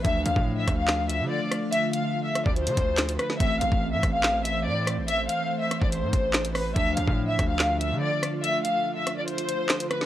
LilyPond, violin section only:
\new Staff \with { instrumentName = "Violin section" } { \time 4/4 \key d \dorian \tempo 4 = 143 e''8 f''8. e''8 f''8. e''8 d''8 r8 | e''8 f''8. e''8 d''16 c''4. b'8 | e''8 f''8. e''8 f''8. e''8 d''8 r8 | e''8 f''8. e''8 d''16 c''4. b'8 |
e''8 f''8. e''8 f''8. e''8 d''8 r8 | e''8 f''8. e''8 d''16 c''4. b'8 | }